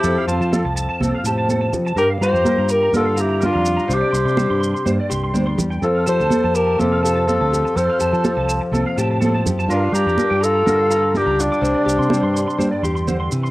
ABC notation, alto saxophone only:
X:1
M:4/4
L:1/8
Q:"Swing 16ths" 1/4=124
K:F
V:1 name="Alto saxophone"
G F2 z4 z | B c2 B A G F2 | G4 z4 | A c2 B A A A2 |
c4 z4 | F G2 A3 G D- | D6 z2 |]